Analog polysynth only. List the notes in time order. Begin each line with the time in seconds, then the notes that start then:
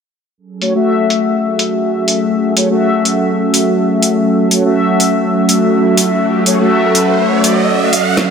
0.62 A3 F#4 C#5
0.75 A3 F#4 E5
2.57 A3 F#4 C#5
2.71 A3 F#4 E5
4.51 A3 F#4 C#5
4.65 A3 F#4 E5
6.47 A3 F#4 C#5
6.60 A3 F#4 E5
7.83 A3 F#4 F#5